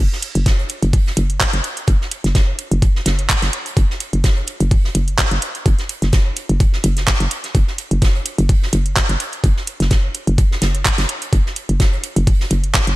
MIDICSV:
0, 0, Header, 1, 3, 480
1, 0, Start_track
1, 0, Tempo, 472441
1, 1908, Time_signature, 4, 2, 24, 8
1, 13166, End_track
2, 0, Start_track
2, 0, Title_t, "FM bass"
2, 0, Program_c, 0, 39
2, 358, Note_on_c, 0, 30, 89
2, 658, Note_off_c, 0, 30, 0
2, 838, Note_on_c, 0, 30, 95
2, 1138, Note_off_c, 0, 30, 0
2, 1188, Note_on_c, 0, 30, 97
2, 1498, Note_off_c, 0, 30, 0
2, 1558, Note_on_c, 0, 30, 81
2, 1636, Note_off_c, 0, 30, 0
2, 1908, Note_on_c, 0, 30, 98
2, 2001, Note_off_c, 0, 30, 0
2, 2278, Note_on_c, 0, 30, 89
2, 2577, Note_off_c, 0, 30, 0
2, 2758, Note_on_c, 0, 30, 96
2, 3057, Note_off_c, 0, 30, 0
2, 3108, Note_on_c, 0, 30, 95
2, 3418, Note_off_c, 0, 30, 0
2, 3478, Note_on_c, 0, 30, 82
2, 3556, Note_off_c, 0, 30, 0
2, 3828, Note_on_c, 0, 30, 100
2, 3921, Note_off_c, 0, 30, 0
2, 4198, Note_on_c, 0, 30, 86
2, 4497, Note_off_c, 0, 30, 0
2, 4678, Note_on_c, 0, 30, 94
2, 4977, Note_off_c, 0, 30, 0
2, 5028, Note_on_c, 0, 30, 92
2, 5338, Note_off_c, 0, 30, 0
2, 5398, Note_on_c, 0, 30, 87
2, 5476, Note_off_c, 0, 30, 0
2, 5748, Note_on_c, 0, 30, 107
2, 5840, Note_off_c, 0, 30, 0
2, 6118, Note_on_c, 0, 30, 89
2, 6417, Note_off_c, 0, 30, 0
2, 6598, Note_on_c, 0, 30, 92
2, 6897, Note_off_c, 0, 30, 0
2, 6949, Note_on_c, 0, 30, 106
2, 7258, Note_off_c, 0, 30, 0
2, 7318, Note_on_c, 0, 30, 95
2, 7396, Note_off_c, 0, 30, 0
2, 7668, Note_on_c, 0, 30, 98
2, 7761, Note_off_c, 0, 30, 0
2, 8039, Note_on_c, 0, 30, 90
2, 8338, Note_off_c, 0, 30, 0
2, 8519, Note_on_c, 0, 30, 101
2, 8818, Note_off_c, 0, 30, 0
2, 8869, Note_on_c, 0, 30, 98
2, 9179, Note_off_c, 0, 30, 0
2, 9238, Note_on_c, 0, 30, 84
2, 9316, Note_off_c, 0, 30, 0
2, 9588, Note_on_c, 0, 30, 103
2, 9681, Note_off_c, 0, 30, 0
2, 9959, Note_on_c, 0, 30, 91
2, 10258, Note_off_c, 0, 30, 0
2, 10438, Note_on_c, 0, 30, 96
2, 10737, Note_off_c, 0, 30, 0
2, 10788, Note_on_c, 0, 30, 95
2, 11098, Note_off_c, 0, 30, 0
2, 11158, Note_on_c, 0, 30, 88
2, 11236, Note_off_c, 0, 30, 0
2, 11508, Note_on_c, 0, 30, 98
2, 11601, Note_off_c, 0, 30, 0
2, 11879, Note_on_c, 0, 30, 84
2, 12178, Note_off_c, 0, 30, 0
2, 12358, Note_on_c, 0, 30, 98
2, 12657, Note_off_c, 0, 30, 0
2, 12708, Note_on_c, 0, 30, 96
2, 13018, Note_off_c, 0, 30, 0
2, 13078, Note_on_c, 0, 30, 81
2, 13156, Note_off_c, 0, 30, 0
2, 13166, End_track
3, 0, Start_track
3, 0, Title_t, "Drums"
3, 125, Note_on_c, 9, 38, 46
3, 224, Note_on_c, 9, 42, 61
3, 227, Note_off_c, 9, 38, 0
3, 228, Note_off_c, 9, 42, 0
3, 228, Note_on_c, 9, 42, 93
3, 330, Note_off_c, 9, 42, 0
3, 358, Note_on_c, 9, 42, 42
3, 460, Note_off_c, 9, 42, 0
3, 468, Note_on_c, 9, 36, 123
3, 468, Note_on_c, 9, 42, 56
3, 471, Note_off_c, 9, 42, 0
3, 471, Note_on_c, 9, 42, 86
3, 473, Note_on_c, 9, 38, 121
3, 570, Note_off_c, 9, 36, 0
3, 573, Note_off_c, 9, 42, 0
3, 574, Note_off_c, 9, 38, 0
3, 600, Note_on_c, 9, 42, 44
3, 698, Note_off_c, 9, 42, 0
3, 698, Note_on_c, 9, 42, 64
3, 708, Note_off_c, 9, 42, 0
3, 708, Note_on_c, 9, 42, 86
3, 810, Note_off_c, 9, 42, 0
3, 838, Note_on_c, 9, 42, 41
3, 841, Note_off_c, 9, 42, 0
3, 841, Note_on_c, 9, 42, 43
3, 943, Note_off_c, 9, 42, 0
3, 947, Note_on_c, 9, 46, 78
3, 948, Note_on_c, 9, 36, 115
3, 948, Note_on_c, 9, 42, 57
3, 1048, Note_off_c, 9, 46, 0
3, 1050, Note_off_c, 9, 36, 0
3, 1050, Note_off_c, 9, 42, 0
3, 1081, Note_on_c, 9, 38, 48
3, 1183, Note_off_c, 9, 38, 0
3, 1187, Note_on_c, 9, 42, 76
3, 1188, Note_off_c, 9, 42, 0
3, 1188, Note_on_c, 9, 42, 95
3, 1290, Note_off_c, 9, 42, 0
3, 1318, Note_on_c, 9, 42, 42
3, 1420, Note_off_c, 9, 42, 0
3, 1428, Note_on_c, 9, 36, 116
3, 1428, Note_on_c, 9, 39, 106
3, 1428, Note_on_c, 9, 42, 51
3, 1430, Note_on_c, 9, 38, 110
3, 1433, Note_off_c, 9, 42, 0
3, 1433, Note_on_c, 9, 42, 87
3, 1529, Note_off_c, 9, 36, 0
3, 1529, Note_off_c, 9, 39, 0
3, 1531, Note_off_c, 9, 38, 0
3, 1534, Note_off_c, 9, 42, 0
3, 1558, Note_on_c, 9, 42, 53
3, 1660, Note_off_c, 9, 42, 0
3, 1664, Note_on_c, 9, 42, 66
3, 1668, Note_off_c, 9, 42, 0
3, 1668, Note_on_c, 9, 42, 92
3, 1769, Note_off_c, 9, 42, 0
3, 1798, Note_on_c, 9, 42, 44
3, 1799, Note_off_c, 9, 42, 0
3, 1799, Note_on_c, 9, 42, 41
3, 1900, Note_off_c, 9, 42, 0
3, 1903, Note_on_c, 9, 42, 78
3, 1908, Note_off_c, 9, 42, 0
3, 1908, Note_on_c, 9, 36, 117
3, 1908, Note_on_c, 9, 42, 56
3, 2009, Note_off_c, 9, 36, 0
3, 2009, Note_off_c, 9, 42, 0
3, 2041, Note_on_c, 9, 38, 46
3, 2143, Note_off_c, 9, 38, 0
3, 2146, Note_on_c, 9, 42, 71
3, 2148, Note_off_c, 9, 42, 0
3, 2148, Note_on_c, 9, 42, 102
3, 2250, Note_off_c, 9, 42, 0
3, 2278, Note_on_c, 9, 42, 42
3, 2285, Note_on_c, 9, 38, 42
3, 2380, Note_off_c, 9, 42, 0
3, 2386, Note_off_c, 9, 38, 0
3, 2387, Note_on_c, 9, 38, 121
3, 2388, Note_on_c, 9, 36, 122
3, 2388, Note_on_c, 9, 42, 55
3, 2390, Note_off_c, 9, 42, 0
3, 2390, Note_on_c, 9, 42, 82
3, 2489, Note_off_c, 9, 36, 0
3, 2489, Note_off_c, 9, 38, 0
3, 2491, Note_off_c, 9, 42, 0
3, 2626, Note_on_c, 9, 42, 62
3, 2628, Note_off_c, 9, 42, 0
3, 2628, Note_on_c, 9, 42, 90
3, 2730, Note_off_c, 9, 42, 0
3, 2758, Note_on_c, 9, 42, 41
3, 2860, Note_off_c, 9, 42, 0
3, 2868, Note_on_c, 9, 36, 121
3, 2868, Note_on_c, 9, 42, 56
3, 2875, Note_off_c, 9, 42, 0
3, 2875, Note_on_c, 9, 42, 79
3, 2969, Note_off_c, 9, 36, 0
3, 2976, Note_off_c, 9, 42, 0
3, 2999, Note_on_c, 9, 38, 49
3, 3101, Note_off_c, 9, 38, 0
3, 3104, Note_on_c, 9, 42, 80
3, 3108, Note_off_c, 9, 42, 0
3, 3108, Note_on_c, 9, 38, 112
3, 3108, Note_on_c, 9, 42, 96
3, 3210, Note_off_c, 9, 38, 0
3, 3210, Note_off_c, 9, 42, 0
3, 3238, Note_on_c, 9, 42, 42
3, 3340, Note_off_c, 9, 42, 0
3, 3348, Note_on_c, 9, 36, 120
3, 3348, Note_on_c, 9, 39, 102
3, 3348, Note_on_c, 9, 42, 50
3, 3449, Note_off_c, 9, 36, 0
3, 3450, Note_off_c, 9, 39, 0
3, 3450, Note_off_c, 9, 42, 0
3, 3472, Note_on_c, 9, 38, 109
3, 3478, Note_on_c, 9, 42, 49
3, 3482, Note_off_c, 9, 42, 0
3, 3482, Note_on_c, 9, 42, 78
3, 3574, Note_off_c, 9, 38, 0
3, 3583, Note_off_c, 9, 42, 0
3, 3588, Note_on_c, 9, 42, 97
3, 3690, Note_off_c, 9, 42, 0
3, 3718, Note_on_c, 9, 42, 42
3, 3726, Note_off_c, 9, 42, 0
3, 3726, Note_on_c, 9, 42, 63
3, 3827, Note_off_c, 9, 42, 0
3, 3828, Note_on_c, 9, 36, 126
3, 3828, Note_on_c, 9, 42, 51
3, 3829, Note_off_c, 9, 42, 0
3, 3829, Note_on_c, 9, 42, 93
3, 3929, Note_off_c, 9, 36, 0
3, 3930, Note_off_c, 9, 42, 0
3, 3962, Note_on_c, 9, 38, 48
3, 4064, Note_off_c, 9, 38, 0
3, 4065, Note_on_c, 9, 42, 73
3, 4068, Note_off_c, 9, 42, 0
3, 4068, Note_on_c, 9, 42, 101
3, 4170, Note_off_c, 9, 42, 0
3, 4198, Note_on_c, 9, 42, 40
3, 4300, Note_off_c, 9, 42, 0
3, 4305, Note_on_c, 9, 42, 101
3, 4308, Note_off_c, 9, 42, 0
3, 4308, Note_on_c, 9, 36, 121
3, 4308, Note_on_c, 9, 38, 127
3, 4308, Note_on_c, 9, 42, 52
3, 4409, Note_off_c, 9, 36, 0
3, 4410, Note_off_c, 9, 38, 0
3, 4410, Note_off_c, 9, 42, 0
3, 4427, Note_on_c, 9, 42, 44
3, 4529, Note_off_c, 9, 42, 0
3, 4540, Note_on_c, 9, 42, 73
3, 4548, Note_off_c, 9, 42, 0
3, 4548, Note_on_c, 9, 42, 90
3, 4650, Note_off_c, 9, 42, 0
3, 4674, Note_on_c, 9, 42, 41
3, 4678, Note_off_c, 9, 42, 0
3, 4678, Note_on_c, 9, 42, 42
3, 4780, Note_off_c, 9, 42, 0
3, 4785, Note_on_c, 9, 46, 74
3, 4788, Note_on_c, 9, 36, 121
3, 4788, Note_on_c, 9, 42, 50
3, 4886, Note_off_c, 9, 46, 0
3, 4890, Note_off_c, 9, 36, 0
3, 4890, Note_off_c, 9, 42, 0
3, 4918, Note_on_c, 9, 38, 49
3, 5020, Note_off_c, 9, 38, 0
3, 5028, Note_on_c, 9, 42, 100
3, 5029, Note_off_c, 9, 42, 0
3, 5029, Note_on_c, 9, 42, 67
3, 5131, Note_off_c, 9, 42, 0
3, 5158, Note_on_c, 9, 42, 40
3, 5260, Note_off_c, 9, 42, 0
3, 5268, Note_on_c, 9, 36, 120
3, 5268, Note_on_c, 9, 38, 127
3, 5268, Note_on_c, 9, 39, 103
3, 5268, Note_on_c, 9, 42, 47
3, 5270, Note_off_c, 9, 42, 0
3, 5270, Note_on_c, 9, 42, 81
3, 5369, Note_off_c, 9, 38, 0
3, 5370, Note_off_c, 9, 36, 0
3, 5370, Note_off_c, 9, 39, 0
3, 5372, Note_off_c, 9, 42, 0
3, 5398, Note_on_c, 9, 42, 48
3, 5500, Note_off_c, 9, 42, 0
3, 5507, Note_on_c, 9, 42, 65
3, 5508, Note_off_c, 9, 42, 0
3, 5508, Note_on_c, 9, 42, 100
3, 5609, Note_off_c, 9, 42, 0
3, 5638, Note_on_c, 9, 42, 42
3, 5739, Note_off_c, 9, 42, 0
3, 5746, Note_on_c, 9, 42, 86
3, 5748, Note_off_c, 9, 42, 0
3, 5748, Note_on_c, 9, 36, 118
3, 5748, Note_on_c, 9, 42, 49
3, 5849, Note_off_c, 9, 42, 0
3, 5850, Note_off_c, 9, 36, 0
3, 5876, Note_on_c, 9, 38, 50
3, 5878, Note_on_c, 9, 42, 28
3, 5978, Note_off_c, 9, 38, 0
3, 5979, Note_off_c, 9, 42, 0
3, 5988, Note_on_c, 9, 42, 100
3, 5996, Note_off_c, 9, 42, 0
3, 5996, Note_on_c, 9, 42, 64
3, 6097, Note_off_c, 9, 42, 0
3, 6117, Note_on_c, 9, 38, 44
3, 6118, Note_on_c, 9, 42, 38
3, 6218, Note_off_c, 9, 38, 0
3, 6219, Note_off_c, 9, 42, 0
3, 6224, Note_on_c, 9, 42, 95
3, 6226, Note_on_c, 9, 38, 127
3, 6227, Note_off_c, 9, 42, 0
3, 6227, Note_on_c, 9, 42, 52
3, 6228, Note_on_c, 9, 36, 125
3, 6328, Note_off_c, 9, 38, 0
3, 6329, Note_off_c, 9, 36, 0
3, 6329, Note_off_c, 9, 42, 0
3, 6463, Note_on_c, 9, 42, 71
3, 6468, Note_off_c, 9, 42, 0
3, 6468, Note_on_c, 9, 42, 94
3, 6569, Note_off_c, 9, 42, 0
3, 6598, Note_on_c, 9, 42, 41
3, 6699, Note_off_c, 9, 42, 0
3, 6708, Note_on_c, 9, 36, 118
3, 6708, Note_on_c, 9, 42, 51
3, 6711, Note_off_c, 9, 42, 0
3, 6711, Note_on_c, 9, 42, 82
3, 6810, Note_off_c, 9, 36, 0
3, 6813, Note_off_c, 9, 42, 0
3, 6833, Note_on_c, 9, 38, 48
3, 6935, Note_off_c, 9, 38, 0
3, 6945, Note_on_c, 9, 42, 67
3, 6948, Note_off_c, 9, 42, 0
3, 6948, Note_on_c, 9, 42, 101
3, 7050, Note_off_c, 9, 42, 0
3, 7077, Note_on_c, 9, 38, 57
3, 7078, Note_on_c, 9, 42, 39
3, 7179, Note_off_c, 9, 38, 0
3, 7180, Note_off_c, 9, 42, 0
3, 7188, Note_on_c, 9, 36, 114
3, 7188, Note_on_c, 9, 39, 99
3, 7188, Note_on_c, 9, 42, 47
3, 7193, Note_on_c, 9, 38, 105
3, 7290, Note_off_c, 9, 36, 0
3, 7290, Note_off_c, 9, 39, 0
3, 7290, Note_off_c, 9, 42, 0
3, 7295, Note_off_c, 9, 38, 0
3, 7318, Note_on_c, 9, 42, 48
3, 7420, Note_off_c, 9, 42, 0
3, 7423, Note_on_c, 9, 42, 75
3, 7428, Note_off_c, 9, 42, 0
3, 7428, Note_on_c, 9, 42, 105
3, 7530, Note_off_c, 9, 42, 0
3, 7557, Note_on_c, 9, 38, 45
3, 7558, Note_on_c, 9, 42, 39
3, 7658, Note_off_c, 9, 38, 0
3, 7660, Note_off_c, 9, 42, 0
3, 7667, Note_on_c, 9, 42, 93
3, 7668, Note_off_c, 9, 42, 0
3, 7668, Note_on_c, 9, 36, 112
3, 7668, Note_on_c, 9, 42, 50
3, 7770, Note_off_c, 9, 36, 0
3, 7770, Note_off_c, 9, 42, 0
3, 7796, Note_on_c, 9, 38, 46
3, 7897, Note_off_c, 9, 38, 0
3, 7908, Note_on_c, 9, 42, 94
3, 7915, Note_off_c, 9, 42, 0
3, 7915, Note_on_c, 9, 42, 70
3, 8017, Note_off_c, 9, 42, 0
3, 8039, Note_on_c, 9, 42, 40
3, 8140, Note_off_c, 9, 42, 0
3, 8146, Note_on_c, 9, 42, 95
3, 8148, Note_off_c, 9, 42, 0
3, 8148, Note_on_c, 9, 36, 116
3, 8148, Note_on_c, 9, 42, 50
3, 8161, Note_on_c, 9, 38, 121
3, 8250, Note_off_c, 9, 36, 0
3, 8250, Note_off_c, 9, 42, 0
3, 8262, Note_off_c, 9, 38, 0
3, 8282, Note_on_c, 9, 42, 40
3, 8383, Note_off_c, 9, 42, 0
3, 8388, Note_on_c, 9, 42, 93
3, 8393, Note_off_c, 9, 42, 0
3, 8393, Note_on_c, 9, 42, 67
3, 8494, Note_off_c, 9, 42, 0
3, 8519, Note_on_c, 9, 42, 40
3, 8520, Note_off_c, 9, 42, 0
3, 8520, Note_on_c, 9, 42, 41
3, 8622, Note_off_c, 9, 42, 0
3, 8627, Note_on_c, 9, 46, 81
3, 8628, Note_on_c, 9, 36, 119
3, 8628, Note_on_c, 9, 42, 54
3, 8728, Note_off_c, 9, 46, 0
3, 8730, Note_off_c, 9, 36, 0
3, 8730, Note_off_c, 9, 42, 0
3, 8762, Note_on_c, 9, 38, 51
3, 8863, Note_off_c, 9, 38, 0
3, 8868, Note_on_c, 9, 42, 96
3, 8873, Note_off_c, 9, 42, 0
3, 8873, Note_on_c, 9, 42, 63
3, 8975, Note_off_c, 9, 42, 0
3, 8999, Note_on_c, 9, 42, 39
3, 9100, Note_off_c, 9, 42, 0
3, 9104, Note_on_c, 9, 42, 80
3, 9108, Note_off_c, 9, 42, 0
3, 9108, Note_on_c, 9, 36, 116
3, 9108, Note_on_c, 9, 39, 92
3, 9108, Note_on_c, 9, 42, 46
3, 9114, Note_on_c, 9, 38, 108
3, 9210, Note_off_c, 9, 36, 0
3, 9210, Note_off_c, 9, 39, 0
3, 9210, Note_off_c, 9, 42, 0
3, 9215, Note_off_c, 9, 38, 0
3, 9239, Note_on_c, 9, 42, 48
3, 9340, Note_off_c, 9, 42, 0
3, 9348, Note_on_c, 9, 42, 102
3, 9355, Note_off_c, 9, 42, 0
3, 9355, Note_on_c, 9, 42, 68
3, 9457, Note_off_c, 9, 42, 0
3, 9472, Note_on_c, 9, 42, 46
3, 9479, Note_off_c, 9, 42, 0
3, 9479, Note_on_c, 9, 42, 42
3, 9580, Note_off_c, 9, 42, 0
3, 9587, Note_on_c, 9, 42, 88
3, 9588, Note_off_c, 9, 42, 0
3, 9588, Note_on_c, 9, 36, 108
3, 9588, Note_on_c, 9, 42, 51
3, 9690, Note_off_c, 9, 36, 0
3, 9690, Note_off_c, 9, 42, 0
3, 9716, Note_on_c, 9, 38, 45
3, 9818, Note_off_c, 9, 38, 0
3, 9823, Note_on_c, 9, 42, 59
3, 9828, Note_off_c, 9, 42, 0
3, 9828, Note_on_c, 9, 42, 96
3, 9930, Note_off_c, 9, 42, 0
3, 9958, Note_on_c, 9, 42, 39
3, 9966, Note_on_c, 9, 38, 53
3, 10060, Note_off_c, 9, 42, 0
3, 10062, Note_on_c, 9, 42, 90
3, 10068, Note_off_c, 9, 38, 0
3, 10068, Note_off_c, 9, 42, 0
3, 10068, Note_on_c, 9, 36, 115
3, 10068, Note_on_c, 9, 42, 54
3, 10069, Note_on_c, 9, 38, 117
3, 10170, Note_off_c, 9, 36, 0
3, 10170, Note_off_c, 9, 38, 0
3, 10170, Note_off_c, 9, 42, 0
3, 10304, Note_on_c, 9, 42, 60
3, 10308, Note_off_c, 9, 42, 0
3, 10308, Note_on_c, 9, 42, 83
3, 10410, Note_off_c, 9, 42, 0
3, 10438, Note_on_c, 9, 42, 39
3, 10540, Note_off_c, 9, 42, 0
3, 10548, Note_on_c, 9, 36, 120
3, 10548, Note_on_c, 9, 42, 53
3, 10550, Note_off_c, 9, 42, 0
3, 10550, Note_on_c, 9, 42, 96
3, 10650, Note_off_c, 9, 36, 0
3, 10651, Note_off_c, 9, 42, 0
3, 10681, Note_on_c, 9, 38, 58
3, 10782, Note_off_c, 9, 38, 0
3, 10786, Note_on_c, 9, 38, 102
3, 10788, Note_on_c, 9, 42, 90
3, 10791, Note_off_c, 9, 42, 0
3, 10791, Note_on_c, 9, 42, 83
3, 10888, Note_off_c, 9, 38, 0
3, 10893, Note_off_c, 9, 42, 0
3, 10918, Note_on_c, 9, 42, 43
3, 11019, Note_off_c, 9, 42, 0
3, 11028, Note_on_c, 9, 36, 114
3, 11028, Note_on_c, 9, 39, 94
3, 11028, Note_on_c, 9, 42, 49
3, 11129, Note_off_c, 9, 36, 0
3, 11129, Note_off_c, 9, 39, 0
3, 11129, Note_off_c, 9, 42, 0
3, 11158, Note_on_c, 9, 38, 110
3, 11158, Note_on_c, 9, 42, 50
3, 11164, Note_off_c, 9, 42, 0
3, 11164, Note_on_c, 9, 42, 81
3, 11259, Note_off_c, 9, 38, 0
3, 11266, Note_off_c, 9, 42, 0
3, 11268, Note_on_c, 9, 42, 97
3, 11370, Note_off_c, 9, 42, 0
3, 11398, Note_on_c, 9, 42, 43
3, 11399, Note_off_c, 9, 42, 0
3, 11399, Note_on_c, 9, 42, 65
3, 11500, Note_off_c, 9, 42, 0
3, 11508, Note_on_c, 9, 36, 107
3, 11508, Note_on_c, 9, 42, 54
3, 11509, Note_off_c, 9, 42, 0
3, 11509, Note_on_c, 9, 42, 84
3, 11609, Note_off_c, 9, 36, 0
3, 11610, Note_off_c, 9, 42, 0
3, 11643, Note_on_c, 9, 38, 46
3, 11744, Note_on_c, 9, 42, 69
3, 11745, Note_off_c, 9, 38, 0
3, 11748, Note_off_c, 9, 42, 0
3, 11748, Note_on_c, 9, 42, 88
3, 11850, Note_off_c, 9, 42, 0
3, 11878, Note_on_c, 9, 42, 41
3, 11980, Note_off_c, 9, 42, 0
3, 11988, Note_on_c, 9, 36, 114
3, 11988, Note_on_c, 9, 42, 54
3, 11991, Note_on_c, 9, 38, 126
3, 12090, Note_off_c, 9, 36, 0
3, 12090, Note_off_c, 9, 42, 0
3, 12093, Note_off_c, 9, 38, 0
3, 12118, Note_on_c, 9, 42, 41
3, 12219, Note_off_c, 9, 42, 0
3, 12226, Note_on_c, 9, 42, 68
3, 12228, Note_off_c, 9, 42, 0
3, 12228, Note_on_c, 9, 42, 85
3, 12330, Note_off_c, 9, 42, 0
3, 12356, Note_on_c, 9, 42, 42
3, 12359, Note_off_c, 9, 42, 0
3, 12359, Note_on_c, 9, 42, 44
3, 12460, Note_off_c, 9, 42, 0
3, 12467, Note_on_c, 9, 46, 81
3, 12468, Note_on_c, 9, 36, 111
3, 12468, Note_on_c, 9, 42, 55
3, 12569, Note_off_c, 9, 46, 0
3, 12570, Note_off_c, 9, 36, 0
3, 12570, Note_off_c, 9, 42, 0
3, 12597, Note_on_c, 9, 38, 56
3, 12699, Note_off_c, 9, 38, 0
3, 12701, Note_on_c, 9, 42, 70
3, 12708, Note_off_c, 9, 42, 0
3, 12708, Note_on_c, 9, 42, 88
3, 12810, Note_off_c, 9, 42, 0
3, 12838, Note_on_c, 9, 42, 42
3, 12940, Note_off_c, 9, 42, 0
3, 12943, Note_on_c, 9, 42, 81
3, 12948, Note_off_c, 9, 42, 0
3, 12948, Note_on_c, 9, 36, 111
3, 12948, Note_on_c, 9, 39, 99
3, 12948, Note_on_c, 9, 42, 50
3, 12950, Note_on_c, 9, 38, 114
3, 13050, Note_off_c, 9, 36, 0
3, 13050, Note_off_c, 9, 39, 0
3, 13050, Note_off_c, 9, 42, 0
3, 13051, Note_off_c, 9, 38, 0
3, 13078, Note_on_c, 9, 42, 53
3, 13166, Note_off_c, 9, 42, 0
3, 13166, End_track
0, 0, End_of_file